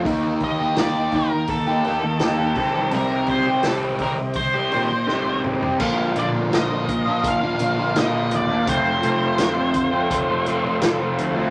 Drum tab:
CC |----------------|----------------|x---------------|----------------|
HH |o-o-o-o-o-o-o-o-|o-o-o-o-o-o-----|--x-x-x-x-x-x-x-|x-x-x-x-x-x-x-x-|
SD |----o-------o---|----o-------o---|----o-------o---|----o-------o---|
T2 |----------------|--------------o-|----------------|----------------|
FT |----------------|---------------o|----------------|----------------|
BD |o-o---o-o-----o-|--o---o-o-------|o-----o-o-------|o-----o-o-------|